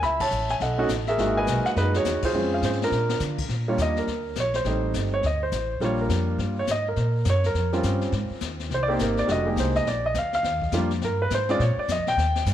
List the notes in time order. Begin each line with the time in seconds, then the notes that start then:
0.02 C#2 E5 B5, brush sweep, snare
0.20 C#5 E5 A5, kick, ride
0.31 A1, hi-hat pedal
0.49 G#5, snare
0.60 B1 A4 D#5 F#5, brush sweep, snare
0.78 A3 C#4 D#4 F#4
0.89 A1, snare, hi-hat pedal
1.07 G#4 A#4 E5, snare
1.18 G#1 A#2 G#3 D#4 F#4, brush sweep, snare
1.37 B4 D#5 G#5
1.47 B1, snare, hi-hat pedal
1.65 F#5, snare
1.76 F#2 D#4 G#4 B4, brush sweep, snare
1.94 F#4 G#4 C#5, snare
2.05 E2, snare, hi-hat pedal
2.22 F4 G#4 C5, muted upright bass stroke, kick, ride
2.33 F2 G#3 C4 C#4 F4, brush sweep
2.54 F5
2.62 G#2 C5, snare, hi-hat pedal
2.72 snare
2.82 D4 F4 A#4, snare
2.91 A#2, snare
3.09 snare
3.20 D3, snare, hi-hat pedal
3.38 kick, crash
3.49 A#2, brush sweep, snare
3.68 G3 A#3 D4 F4 C#5
3.77 D#2, snare, hi-hat pedal
3.82 D#5
3.96 A#4, snare
4.07 D2, brush sweep, snare
4.35 A#1, snare, hi-hat pedal
4.40 C#5
4.54 C5, snare
4.64 A1 G3 A3 C4 D#4, brush sweep, snare
4.94 G1, snare, hi-hat pedal
5.14 C#5
5.23 D2 D#5, brush sweep, snare
5.43 C5
5.52 A1, snare, hi-hat pedal
5.80 A#1 G3 A#3 D4 F4, brush sweep, snare
5.84 C#5
6.01 A#4
6.09 F2, snare, hi-hat pedal
6.38 G2, brush sweep, snare
6.59 C#5
6.67 G#2, snare, hi-hat pedal
6.71 D#5
6.88 A#4
6.96 A#2, brush sweep, snare
7.25 F#2, snare, hi-hat pedal
7.30 C#5
7.44 A#4, snare
7.54 F2, brush sweep, snare
7.73 G3 C4 C#4 F4, snare
7.83 G2, snare, hi-hat pedal
8.01 snare
8.12 G#2, brush sweep, snare
8.30 muted upright bass stroke
8.40 D#2, snare, hi-hat pedal
8.59 snare
8.69 C2, brush sweep, snare
8.74 C5
8.83 D5
8.88 A#3 C4 D#4 G4 C5
8.99 G#1 A#4, snare, hi-hat pedal
9.17 D5, snare
9.28 F1 G3 A3 D4 F#4, brush sweep, snare
9.32 D#5
9.46 G#3 A#3 D#4 G4
9.56 C2 C5, snare, hi-hat pedal
9.75 D#5, snare
9.85 A#1 D5, brush sweep, snare
10.06 D#5
10.14 D2, snare, hi-hat pedal
10.18 F5
10.33 F5, snare
10.43 D#2, brush sweep, snare
10.62 kick
10.72 F2 G3 A#3 D4 F4, snare, hi-hat pedal
10.90 snare
11.01 G2 A#4, brush sweep, snare
11.22 B4
11.30 G#2, snare, hi-hat pedal
11.34 C5
11.49 G#3 C4 C#4 F4 D5, snare
11.59 A#2 C#5, brush sweep, snare
11.77 D5, muted upright bass stroke
11.88 F2 D#5, snare, hi-hat pedal
11.97 C#2
12.07 A#1 G5, snare
12.17 D#2, brush sweep, snare
12.36 snare
12.46 G2, snare, hi-hat pedal